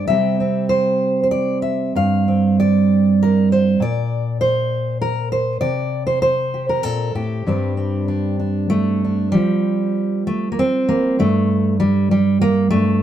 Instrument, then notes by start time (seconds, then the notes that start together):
steel-string acoustic guitar
0.07 C3 G3 C4 G4 E5
0.40 C4
0.69 C5
1.23 C5
1.31 D5
1.62 E5
1.95 G2 F5
2.28 C4
2.60 D5
3.23 A#4
3.52 C5
3.80 A#2 D5
4.41 C5
5.01 A#4
5.32 C5
5.61 C3 D5
6.07 C5
6.22 C5
6.54 G4
6.69 A#4
6.83 A#2 A4
7.15 A2 G4
7.47 G2 G3 C4 D4
7.77 C4
8.08 D4
8.40 D4
8.70 A3 D4
9.04 D4
9.32 F3 G3
10.27 A3
10.52 A#3
10.59 C4
10.89 A#3
11.19 G2 A3
11.80 G3
12.11 G3
12.41 A#3
12.70 G2 A3